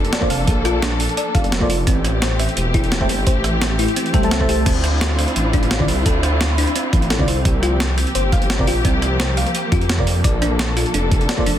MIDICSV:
0, 0, Header, 1, 6, 480
1, 0, Start_track
1, 0, Key_signature, -1, "minor"
1, 0, Tempo, 348837
1, 655, Time_signature, 4, 2, 24, 8
1, 15942, End_track
2, 0, Start_track
2, 0, Title_t, "FM electric piano"
2, 0, Program_c, 0, 5
2, 286, Note_on_c, 0, 58, 100
2, 293, Note_on_c, 0, 65, 90
2, 300, Note_on_c, 0, 69, 92
2, 308, Note_on_c, 0, 72, 91
2, 316, Note_on_c, 0, 74, 110
2, 372, Note_off_c, 0, 58, 0
2, 376, Note_off_c, 0, 65, 0
2, 379, Note_off_c, 0, 69, 0
2, 383, Note_off_c, 0, 72, 0
2, 387, Note_off_c, 0, 74, 0
2, 2206, Note_on_c, 0, 58, 99
2, 2214, Note_on_c, 0, 65, 91
2, 2222, Note_on_c, 0, 69, 90
2, 2229, Note_on_c, 0, 72, 90
2, 2236, Note_on_c, 0, 74, 110
2, 2292, Note_off_c, 0, 58, 0
2, 2296, Note_off_c, 0, 65, 0
2, 2300, Note_off_c, 0, 69, 0
2, 2304, Note_off_c, 0, 72, 0
2, 2307, Note_off_c, 0, 74, 0
2, 4128, Note_on_c, 0, 57, 100
2, 4136, Note_on_c, 0, 69, 90
2, 4143, Note_on_c, 0, 72, 91
2, 4151, Note_on_c, 0, 76, 89
2, 4157, Note_on_c, 0, 79, 110
2, 4213, Note_off_c, 0, 57, 0
2, 4217, Note_off_c, 0, 69, 0
2, 4221, Note_off_c, 0, 72, 0
2, 4224, Note_off_c, 0, 76, 0
2, 4228, Note_off_c, 0, 79, 0
2, 5681, Note_on_c, 0, 57, 80
2, 5689, Note_on_c, 0, 69, 74
2, 5696, Note_on_c, 0, 72, 72
2, 5703, Note_on_c, 0, 76, 71
2, 5711, Note_on_c, 0, 79, 88
2, 5786, Note_off_c, 0, 57, 0
2, 5790, Note_off_c, 0, 69, 0
2, 5793, Note_off_c, 0, 72, 0
2, 5797, Note_off_c, 0, 76, 0
2, 5801, Note_off_c, 0, 79, 0
2, 5810, Note_on_c, 0, 57, 81
2, 5817, Note_on_c, 0, 69, 72
2, 5825, Note_on_c, 0, 72, 71
2, 5832, Note_on_c, 0, 76, 73
2, 5840, Note_on_c, 0, 81, 88
2, 6026, Note_off_c, 0, 57, 0
2, 6029, Note_off_c, 0, 69, 0
2, 6034, Note_off_c, 0, 72, 0
2, 6037, Note_off_c, 0, 76, 0
2, 6041, Note_off_c, 0, 81, 0
2, 6051, Note_on_c, 0, 57, 95
2, 6057, Note_on_c, 0, 69, 89
2, 6065, Note_on_c, 0, 72, 87
2, 6072, Note_on_c, 0, 76, 90
2, 6080, Note_on_c, 0, 81, 110
2, 6396, Note_off_c, 0, 57, 0
2, 6399, Note_off_c, 0, 69, 0
2, 6403, Note_off_c, 0, 72, 0
2, 6406, Note_off_c, 0, 76, 0
2, 6410, Note_off_c, 0, 81, 0
2, 7969, Note_on_c, 0, 50, 99
2, 7976, Note_on_c, 0, 60, 91
2, 7984, Note_on_c, 0, 64, 88
2, 7991, Note_on_c, 0, 65, 92
2, 7999, Note_on_c, 0, 74, 107
2, 8054, Note_off_c, 0, 50, 0
2, 8057, Note_off_c, 0, 60, 0
2, 8061, Note_off_c, 0, 64, 0
2, 8065, Note_off_c, 0, 65, 0
2, 8069, Note_off_c, 0, 74, 0
2, 9888, Note_on_c, 0, 50, 100
2, 9896, Note_on_c, 0, 60, 94
2, 9903, Note_on_c, 0, 64, 94
2, 9911, Note_on_c, 0, 65, 90
2, 9918, Note_on_c, 0, 74, 111
2, 9973, Note_off_c, 0, 50, 0
2, 9977, Note_off_c, 0, 60, 0
2, 9981, Note_off_c, 0, 64, 0
2, 9985, Note_off_c, 0, 65, 0
2, 9988, Note_off_c, 0, 74, 0
2, 11808, Note_on_c, 0, 48, 102
2, 11815, Note_on_c, 0, 60, 89
2, 11823, Note_on_c, 0, 65, 93
2, 11830, Note_on_c, 0, 70, 91
2, 11837, Note_on_c, 0, 74, 111
2, 11893, Note_off_c, 0, 48, 0
2, 11897, Note_off_c, 0, 60, 0
2, 11900, Note_off_c, 0, 65, 0
2, 11904, Note_off_c, 0, 70, 0
2, 11908, Note_off_c, 0, 74, 0
2, 13728, Note_on_c, 0, 48, 96
2, 13736, Note_on_c, 0, 60, 89
2, 13744, Note_on_c, 0, 65, 92
2, 13750, Note_on_c, 0, 70, 90
2, 13758, Note_on_c, 0, 74, 108
2, 13813, Note_off_c, 0, 48, 0
2, 13817, Note_off_c, 0, 60, 0
2, 13821, Note_off_c, 0, 65, 0
2, 13824, Note_off_c, 0, 70, 0
2, 13828, Note_off_c, 0, 74, 0
2, 15648, Note_on_c, 0, 58, 98
2, 15656, Note_on_c, 0, 65, 91
2, 15664, Note_on_c, 0, 69, 91
2, 15671, Note_on_c, 0, 72, 88
2, 15679, Note_on_c, 0, 74, 108
2, 15733, Note_off_c, 0, 58, 0
2, 15737, Note_off_c, 0, 65, 0
2, 15741, Note_off_c, 0, 69, 0
2, 15745, Note_off_c, 0, 72, 0
2, 15748, Note_off_c, 0, 74, 0
2, 15942, End_track
3, 0, Start_track
3, 0, Title_t, "Synth arpeggio sound"
3, 0, Program_c, 1, 84
3, 175, Note_on_c, 1, 74, 80
3, 312, Note_off_c, 1, 74, 0
3, 414, Note_on_c, 1, 77, 79
3, 633, Note_off_c, 1, 77, 0
3, 895, Note_on_c, 1, 65, 103
3, 1124, Note_off_c, 1, 65, 0
3, 1134, Note_on_c, 1, 62, 80
3, 1272, Note_off_c, 1, 62, 0
3, 1615, Note_on_c, 1, 74, 84
3, 1752, Note_off_c, 1, 74, 0
3, 1854, Note_on_c, 1, 77, 74
3, 2072, Note_off_c, 1, 77, 0
3, 2333, Note_on_c, 1, 65, 106
3, 2563, Note_off_c, 1, 65, 0
3, 2573, Note_on_c, 1, 60, 85
3, 2712, Note_off_c, 1, 60, 0
3, 3054, Note_on_c, 1, 72, 80
3, 3192, Note_off_c, 1, 72, 0
3, 3294, Note_on_c, 1, 76, 77
3, 3512, Note_off_c, 1, 76, 0
3, 3774, Note_on_c, 1, 64, 98
3, 4004, Note_off_c, 1, 64, 0
3, 4015, Note_on_c, 1, 60, 78
3, 4153, Note_off_c, 1, 60, 0
3, 4496, Note_on_c, 1, 72, 86
3, 4633, Note_off_c, 1, 72, 0
3, 4736, Note_on_c, 1, 76, 78
3, 4953, Note_off_c, 1, 76, 0
3, 5216, Note_on_c, 1, 64, 99
3, 5445, Note_off_c, 1, 64, 0
3, 5457, Note_on_c, 1, 60, 86
3, 5593, Note_off_c, 1, 60, 0
3, 5696, Note_on_c, 1, 69, 99
3, 5833, Note_off_c, 1, 69, 0
3, 5937, Note_on_c, 1, 76, 80
3, 6154, Note_off_c, 1, 76, 0
3, 6176, Note_on_c, 1, 67, 77
3, 6393, Note_off_c, 1, 67, 0
3, 6416, Note_on_c, 1, 60, 86
3, 6553, Note_off_c, 1, 60, 0
3, 6895, Note_on_c, 1, 69, 78
3, 7033, Note_off_c, 1, 69, 0
3, 7136, Note_on_c, 1, 72, 78
3, 7353, Note_off_c, 1, 72, 0
3, 7617, Note_on_c, 1, 62, 100
3, 7845, Note_off_c, 1, 62, 0
3, 7857, Note_on_c, 1, 60, 78
3, 7994, Note_off_c, 1, 60, 0
3, 8336, Note_on_c, 1, 69, 84
3, 8473, Note_off_c, 1, 69, 0
3, 8576, Note_on_c, 1, 72, 78
3, 8793, Note_off_c, 1, 72, 0
3, 9057, Note_on_c, 1, 62, 100
3, 9285, Note_off_c, 1, 62, 0
3, 9297, Note_on_c, 1, 60, 85
3, 9433, Note_off_c, 1, 60, 0
3, 9776, Note_on_c, 1, 69, 80
3, 9913, Note_off_c, 1, 69, 0
3, 10017, Note_on_c, 1, 72, 80
3, 10234, Note_off_c, 1, 72, 0
3, 10496, Note_on_c, 1, 65, 106
3, 10725, Note_off_c, 1, 65, 0
3, 10737, Note_on_c, 1, 60, 81
3, 10873, Note_off_c, 1, 60, 0
3, 11217, Note_on_c, 1, 72, 88
3, 11354, Note_off_c, 1, 72, 0
3, 11457, Note_on_c, 1, 77, 75
3, 11674, Note_off_c, 1, 77, 0
3, 11935, Note_on_c, 1, 65, 106
3, 12164, Note_off_c, 1, 65, 0
3, 12177, Note_on_c, 1, 60, 84
3, 12314, Note_off_c, 1, 60, 0
3, 12657, Note_on_c, 1, 72, 78
3, 12794, Note_off_c, 1, 72, 0
3, 12897, Note_on_c, 1, 77, 79
3, 13114, Note_off_c, 1, 77, 0
3, 13377, Note_on_c, 1, 65, 99
3, 13605, Note_off_c, 1, 65, 0
3, 13617, Note_on_c, 1, 60, 80
3, 13754, Note_off_c, 1, 60, 0
3, 14097, Note_on_c, 1, 74, 88
3, 14233, Note_off_c, 1, 74, 0
3, 14338, Note_on_c, 1, 62, 104
3, 14554, Note_off_c, 1, 62, 0
3, 14817, Note_on_c, 1, 65, 105
3, 15045, Note_off_c, 1, 65, 0
3, 15055, Note_on_c, 1, 62, 88
3, 15193, Note_off_c, 1, 62, 0
3, 15537, Note_on_c, 1, 74, 78
3, 15673, Note_off_c, 1, 74, 0
3, 15776, Note_on_c, 1, 62, 104
3, 15942, Note_off_c, 1, 62, 0
3, 15942, End_track
4, 0, Start_track
4, 0, Title_t, "String section"
4, 0, Program_c, 2, 48
4, 0, Note_on_c, 2, 53, 77
4, 0, Note_on_c, 2, 58, 73
4, 0, Note_on_c, 2, 62, 73
4, 0, Note_on_c, 2, 69, 87
4, 2520, Note_off_c, 2, 53, 0
4, 2537, Note_off_c, 2, 58, 0
4, 2537, Note_off_c, 2, 62, 0
4, 2537, Note_off_c, 2, 69, 0
4, 2573, Note_on_c, 2, 57, 73
4, 2574, Note_on_c, 2, 67, 86
4, 2575, Note_on_c, 2, 52, 79
4, 2575, Note_on_c, 2, 60, 73
4, 6376, Note_off_c, 2, 57, 0
4, 6377, Note_off_c, 2, 52, 0
4, 6377, Note_off_c, 2, 67, 0
4, 6416, Note_on_c, 2, 65, 87
4, 6418, Note_on_c, 2, 62, 73
4, 6418, Note_on_c, 2, 64, 77
4, 10217, Note_off_c, 2, 65, 0
4, 10218, Note_off_c, 2, 62, 0
4, 10218, Note_off_c, 2, 64, 0
4, 10256, Note_on_c, 2, 58, 72
4, 10256, Note_on_c, 2, 67, 85
4, 10257, Note_on_c, 2, 53, 78
4, 14040, Note_off_c, 2, 60, 0
4, 14058, Note_off_c, 2, 67, 0
4, 14099, Note_on_c, 2, 62, 70
4, 14099, Note_on_c, 2, 69, 85
4, 15942, Note_off_c, 2, 53, 0
4, 15942, Note_off_c, 2, 58, 0
4, 15942, Note_off_c, 2, 62, 0
4, 15942, Note_off_c, 2, 69, 0
4, 15942, End_track
5, 0, Start_track
5, 0, Title_t, "Detuned saw bass"
5, 0, Program_c, 3, 39
5, 0, Note_on_c, 3, 29, 101
5, 157, Note_off_c, 3, 29, 0
5, 417, Note_on_c, 3, 29, 100
5, 634, Note_off_c, 3, 29, 0
5, 655, Note_on_c, 3, 34, 96
5, 1483, Note_off_c, 3, 34, 0
5, 1854, Note_on_c, 3, 29, 96
5, 2203, Note_off_c, 3, 29, 0
5, 2222, Note_on_c, 3, 29, 87
5, 2557, Note_off_c, 3, 29, 0
5, 2574, Note_on_c, 3, 33, 99
5, 3403, Note_off_c, 3, 33, 0
5, 3534, Note_on_c, 3, 28, 101
5, 4255, Note_on_c, 3, 31, 97
5, 4276, Note_off_c, 3, 28, 0
5, 4473, Note_off_c, 3, 31, 0
5, 4494, Note_on_c, 3, 33, 96
5, 5323, Note_off_c, 3, 33, 0
5, 5695, Note_on_c, 3, 36, 79
5, 6397, Note_off_c, 3, 36, 0
5, 6415, Note_on_c, 3, 38, 101
5, 7243, Note_off_c, 3, 38, 0
5, 7376, Note_on_c, 3, 33, 101
5, 8097, Note_on_c, 3, 36, 100
5, 8118, Note_off_c, 3, 33, 0
5, 8314, Note_off_c, 3, 36, 0
5, 8335, Note_on_c, 3, 38, 99
5, 9163, Note_off_c, 3, 38, 0
5, 9536, Note_on_c, 3, 33, 98
5, 9903, Note_on_c, 3, 36, 86
5, 9924, Note_off_c, 3, 33, 0
5, 10237, Note_off_c, 3, 36, 0
5, 10254, Note_on_c, 3, 36, 97
5, 11083, Note_off_c, 3, 36, 0
5, 11217, Note_on_c, 3, 31, 99
5, 11937, Note_on_c, 3, 34, 103
5, 11958, Note_off_c, 3, 31, 0
5, 12154, Note_off_c, 3, 34, 0
5, 12175, Note_on_c, 3, 36, 100
5, 13003, Note_off_c, 3, 36, 0
5, 13375, Note_on_c, 3, 41, 82
5, 14077, Note_off_c, 3, 41, 0
5, 14095, Note_on_c, 3, 34, 99
5, 14923, Note_off_c, 3, 34, 0
5, 15058, Note_on_c, 3, 29, 100
5, 15519, Note_off_c, 3, 29, 0
5, 15776, Note_on_c, 3, 29, 101
5, 15942, Note_off_c, 3, 29, 0
5, 15942, End_track
6, 0, Start_track
6, 0, Title_t, "Drums"
6, 63, Note_on_c, 9, 42, 36
6, 174, Note_off_c, 9, 42, 0
6, 174, Note_on_c, 9, 38, 118
6, 174, Note_on_c, 9, 42, 87
6, 302, Note_on_c, 9, 36, 62
6, 312, Note_off_c, 9, 38, 0
6, 312, Note_off_c, 9, 42, 0
6, 414, Note_on_c, 9, 46, 81
6, 439, Note_off_c, 9, 36, 0
6, 551, Note_off_c, 9, 46, 0
6, 654, Note_on_c, 9, 36, 115
6, 654, Note_on_c, 9, 42, 90
6, 791, Note_off_c, 9, 36, 0
6, 791, Note_off_c, 9, 42, 0
6, 894, Note_on_c, 9, 37, 35
6, 894, Note_on_c, 9, 42, 65
6, 1032, Note_off_c, 9, 37, 0
6, 1032, Note_off_c, 9, 42, 0
6, 1134, Note_on_c, 9, 38, 120
6, 1134, Note_on_c, 9, 42, 96
6, 1272, Note_off_c, 9, 38, 0
6, 1272, Note_off_c, 9, 42, 0
6, 1374, Note_on_c, 9, 46, 82
6, 1503, Note_on_c, 9, 42, 36
6, 1512, Note_off_c, 9, 46, 0
6, 1614, Note_off_c, 9, 42, 0
6, 1614, Note_on_c, 9, 42, 92
6, 1752, Note_off_c, 9, 42, 0
6, 1853, Note_on_c, 9, 36, 105
6, 1855, Note_on_c, 9, 42, 65
6, 1983, Note_off_c, 9, 42, 0
6, 1983, Note_on_c, 9, 42, 37
6, 1991, Note_off_c, 9, 36, 0
6, 2095, Note_off_c, 9, 42, 0
6, 2095, Note_on_c, 9, 38, 116
6, 2095, Note_on_c, 9, 42, 92
6, 2222, Note_on_c, 9, 36, 60
6, 2233, Note_off_c, 9, 38, 0
6, 2233, Note_off_c, 9, 42, 0
6, 2335, Note_on_c, 9, 46, 83
6, 2359, Note_off_c, 9, 36, 0
6, 2472, Note_off_c, 9, 46, 0
6, 2573, Note_on_c, 9, 36, 116
6, 2574, Note_on_c, 9, 42, 98
6, 2711, Note_off_c, 9, 36, 0
6, 2712, Note_off_c, 9, 42, 0
6, 2814, Note_on_c, 9, 37, 35
6, 2814, Note_on_c, 9, 42, 68
6, 2952, Note_off_c, 9, 37, 0
6, 2952, Note_off_c, 9, 42, 0
6, 3054, Note_on_c, 9, 38, 117
6, 3054, Note_on_c, 9, 42, 98
6, 3191, Note_off_c, 9, 38, 0
6, 3191, Note_off_c, 9, 42, 0
6, 3295, Note_on_c, 9, 37, 32
6, 3295, Note_on_c, 9, 46, 79
6, 3423, Note_on_c, 9, 42, 38
6, 3432, Note_off_c, 9, 37, 0
6, 3432, Note_off_c, 9, 46, 0
6, 3534, Note_off_c, 9, 42, 0
6, 3534, Note_on_c, 9, 42, 95
6, 3672, Note_off_c, 9, 42, 0
6, 3773, Note_on_c, 9, 36, 104
6, 3774, Note_on_c, 9, 42, 67
6, 3903, Note_off_c, 9, 42, 0
6, 3903, Note_on_c, 9, 42, 39
6, 3911, Note_off_c, 9, 36, 0
6, 4014, Note_off_c, 9, 42, 0
6, 4014, Note_on_c, 9, 38, 110
6, 4014, Note_on_c, 9, 42, 94
6, 4142, Note_on_c, 9, 36, 59
6, 4152, Note_off_c, 9, 38, 0
6, 4152, Note_off_c, 9, 42, 0
6, 4256, Note_on_c, 9, 46, 79
6, 4280, Note_off_c, 9, 36, 0
6, 4393, Note_off_c, 9, 46, 0
6, 4494, Note_on_c, 9, 36, 118
6, 4496, Note_on_c, 9, 42, 97
6, 4631, Note_off_c, 9, 36, 0
6, 4633, Note_off_c, 9, 42, 0
6, 4735, Note_on_c, 9, 37, 36
6, 4735, Note_on_c, 9, 42, 71
6, 4873, Note_off_c, 9, 37, 0
6, 4873, Note_off_c, 9, 42, 0
6, 4975, Note_on_c, 9, 38, 118
6, 4975, Note_on_c, 9, 42, 99
6, 5112, Note_off_c, 9, 38, 0
6, 5112, Note_off_c, 9, 42, 0
6, 5215, Note_on_c, 9, 46, 79
6, 5344, Note_on_c, 9, 42, 38
6, 5352, Note_off_c, 9, 46, 0
6, 5455, Note_off_c, 9, 42, 0
6, 5455, Note_on_c, 9, 42, 98
6, 5584, Note_off_c, 9, 42, 0
6, 5584, Note_on_c, 9, 42, 42
6, 5694, Note_on_c, 9, 36, 104
6, 5695, Note_off_c, 9, 42, 0
6, 5695, Note_on_c, 9, 42, 66
6, 5824, Note_off_c, 9, 42, 0
6, 5824, Note_on_c, 9, 42, 39
6, 5832, Note_off_c, 9, 36, 0
6, 5936, Note_off_c, 9, 42, 0
6, 5936, Note_on_c, 9, 38, 117
6, 5936, Note_on_c, 9, 42, 94
6, 6063, Note_on_c, 9, 36, 60
6, 6074, Note_off_c, 9, 38, 0
6, 6074, Note_off_c, 9, 42, 0
6, 6177, Note_on_c, 9, 46, 79
6, 6200, Note_off_c, 9, 36, 0
6, 6314, Note_off_c, 9, 46, 0
6, 6415, Note_on_c, 9, 36, 122
6, 6416, Note_on_c, 9, 42, 98
6, 6416, Note_on_c, 9, 49, 77
6, 6552, Note_off_c, 9, 36, 0
6, 6553, Note_off_c, 9, 42, 0
6, 6553, Note_off_c, 9, 49, 0
6, 6656, Note_on_c, 9, 37, 38
6, 6656, Note_on_c, 9, 42, 69
6, 6793, Note_off_c, 9, 37, 0
6, 6793, Note_off_c, 9, 42, 0
6, 6896, Note_on_c, 9, 38, 124
6, 6896, Note_on_c, 9, 42, 100
6, 7034, Note_off_c, 9, 38, 0
6, 7034, Note_off_c, 9, 42, 0
6, 7136, Note_on_c, 9, 37, 35
6, 7136, Note_on_c, 9, 46, 74
6, 7264, Note_on_c, 9, 42, 39
6, 7274, Note_off_c, 9, 37, 0
6, 7274, Note_off_c, 9, 46, 0
6, 7376, Note_off_c, 9, 42, 0
6, 7376, Note_on_c, 9, 42, 96
6, 7513, Note_off_c, 9, 42, 0
6, 7615, Note_on_c, 9, 36, 109
6, 7616, Note_on_c, 9, 42, 67
6, 7744, Note_off_c, 9, 42, 0
6, 7744, Note_on_c, 9, 42, 38
6, 7753, Note_off_c, 9, 36, 0
6, 7855, Note_off_c, 9, 42, 0
6, 7855, Note_on_c, 9, 38, 119
6, 7855, Note_on_c, 9, 42, 92
6, 7984, Note_on_c, 9, 36, 63
6, 7993, Note_off_c, 9, 38, 0
6, 7993, Note_off_c, 9, 42, 0
6, 8095, Note_on_c, 9, 46, 78
6, 8121, Note_off_c, 9, 36, 0
6, 8233, Note_off_c, 9, 46, 0
6, 8335, Note_on_c, 9, 36, 124
6, 8335, Note_on_c, 9, 42, 96
6, 8472, Note_off_c, 9, 36, 0
6, 8472, Note_off_c, 9, 42, 0
6, 8576, Note_on_c, 9, 37, 37
6, 8576, Note_on_c, 9, 42, 69
6, 8713, Note_off_c, 9, 37, 0
6, 8713, Note_off_c, 9, 42, 0
6, 8815, Note_on_c, 9, 38, 127
6, 8815, Note_on_c, 9, 42, 100
6, 8953, Note_off_c, 9, 38, 0
6, 8953, Note_off_c, 9, 42, 0
6, 9055, Note_on_c, 9, 46, 75
6, 9184, Note_on_c, 9, 42, 37
6, 9193, Note_off_c, 9, 46, 0
6, 9295, Note_off_c, 9, 42, 0
6, 9295, Note_on_c, 9, 42, 97
6, 9433, Note_off_c, 9, 42, 0
6, 9535, Note_on_c, 9, 36, 112
6, 9536, Note_on_c, 9, 42, 65
6, 9663, Note_off_c, 9, 42, 0
6, 9663, Note_on_c, 9, 42, 38
6, 9672, Note_off_c, 9, 36, 0
6, 9775, Note_off_c, 9, 42, 0
6, 9775, Note_on_c, 9, 38, 123
6, 9775, Note_on_c, 9, 42, 94
6, 9903, Note_on_c, 9, 36, 65
6, 9912, Note_off_c, 9, 38, 0
6, 9912, Note_off_c, 9, 42, 0
6, 10015, Note_on_c, 9, 46, 75
6, 10041, Note_off_c, 9, 36, 0
6, 10153, Note_off_c, 9, 46, 0
6, 10255, Note_on_c, 9, 36, 127
6, 10255, Note_on_c, 9, 42, 94
6, 10392, Note_off_c, 9, 36, 0
6, 10393, Note_off_c, 9, 42, 0
6, 10495, Note_on_c, 9, 37, 37
6, 10495, Note_on_c, 9, 42, 64
6, 10633, Note_off_c, 9, 37, 0
6, 10633, Note_off_c, 9, 42, 0
6, 10735, Note_on_c, 9, 38, 127
6, 10735, Note_on_c, 9, 42, 93
6, 10873, Note_off_c, 9, 38, 0
6, 10873, Note_off_c, 9, 42, 0
6, 10976, Note_on_c, 9, 37, 34
6, 10976, Note_on_c, 9, 46, 77
6, 11104, Note_on_c, 9, 42, 36
6, 11113, Note_off_c, 9, 37, 0
6, 11113, Note_off_c, 9, 46, 0
6, 11215, Note_off_c, 9, 42, 0
6, 11215, Note_on_c, 9, 42, 92
6, 11353, Note_off_c, 9, 42, 0
6, 11454, Note_on_c, 9, 36, 110
6, 11455, Note_on_c, 9, 42, 64
6, 11583, Note_off_c, 9, 42, 0
6, 11583, Note_on_c, 9, 42, 37
6, 11592, Note_off_c, 9, 36, 0
6, 11694, Note_off_c, 9, 42, 0
6, 11694, Note_on_c, 9, 38, 120
6, 11694, Note_on_c, 9, 42, 89
6, 11823, Note_on_c, 9, 36, 67
6, 11832, Note_off_c, 9, 38, 0
6, 11832, Note_off_c, 9, 42, 0
6, 11935, Note_on_c, 9, 46, 78
6, 11960, Note_off_c, 9, 36, 0
6, 12073, Note_off_c, 9, 46, 0
6, 12174, Note_on_c, 9, 36, 126
6, 12175, Note_on_c, 9, 42, 89
6, 12312, Note_off_c, 9, 36, 0
6, 12312, Note_off_c, 9, 42, 0
6, 12415, Note_on_c, 9, 37, 35
6, 12415, Note_on_c, 9, 42, 62
6, 12552, Note_off_c, 9, 37, 0
6, 12552, Note_off_c, 9, 42, 0
6, 12655, Note_on_c, 9, 38, 125
6, 12655, Note_on_c, 9, 42, 90
6, 12793, Note_off_c, 9, 38, 0
6, 12793, Note_off_c, 9, 42, 0
6, 12895, Note_on_c, 9, 46, 78
6, 13024, Note_on_c, 9, 42, 36
6, 13033, Note_off_c, 9, 46, 0
6, 13135, Note_off_c, 9, 42, 0
6, 13135, Note_on_c, 9, 42, 92
6, 13273, Note_off_c, 9, 42, 0
6, 13374, Note_on_c, 9, 36, 110
6, 13376, Note_on_c, 9, 42, 62
6, 13505, Note_off_c, 9, 42, 0
6, 13505, Note_on_c, 9, 42, 36
6, 13512, Note_off_c, 9, 36, 0
6, 13615, Note_off_c, 9, 42, 0
6, 13615, Note_on_c, 9, 38, 122
6, 13615, Note_on_c, 9, 42, 85
6, 13743, Note_on_c, 9, 36, 65
6, 13753, Note_off_c, 9, 38, 0
6, 13753, Note_off_c, 9, 42, 0
6, 13856, Note_on_c, 9, 46, 81
6, 13880, Note_off_c, 9, 36, 0
6, 13994, Note_off_c, 9, 46, 0
6, 14094, Note_on_c, 9, 36, 119
6, 14096, Note_on_c, 9, 42, 92
6, 14232, Note_off_c, 9, 36, 0
6, 14234, Note_off_c, 9, 42, 0
6, 14336, Note_on_c, 9, 37, 34
6, 14336, Note_on_c, 9, 42, 66
6, 14474, Note_off_c, 9, 37, 0
6, 14474, Note_off_c, 9, 42, 0
6, 14576, Note_on_c, 9, 38, 124
6, 14576, Note_on_c, 9, 42, 93
6, 14714, Note_off_c, 9, 38, 0
6, 14714, Note_off_c, 9, 42, 0
6, 14816, Note_on_c, 9, 37, 32
6, 14816, Note_on_c, 9, 46, 80
6, 14944, Note_on_c, 9, 42, 35
6, 14953, Note_off_c, 9, 37, 0
6, 14953, Note_off_c, 9, 46, 0
6, 15055, Note_off_c, 9, 42, 0
6, 15055, Note_on_c, 9, 42, 89
6, 15193, Note_off_c, 9, 42, 0
6, 15295, Note_on_c, 9, 36, 111
6, 15295, Note_on_c, 9, 42, 64
6, 15424, Note_off_c, 9, 42, 0
6, 15424, Note_on_c, 9, 42, 36
6, 15432, Note_off_c, 9, 36, 0
6, 15535, Note_off_c, 9, 42, 0
6, 15535, Note_on_c, 9, 38, 119
6, 15535, Note_on_c, 9, 42, 86
6, 15663, Note_on_c, 9, 36, 64
6, 15673, Note_off_c, 9, 38, 0
6, 15673, Note_off_c, 9, 42, 0
6, 15774, Note_on_c, 9, 46, 86
6, 15800, Note_off_c, 9, 36, 0
6, 15912, Note_off_c, 9, 46, 0
6, 15942, End_track
0, 0, End_of_file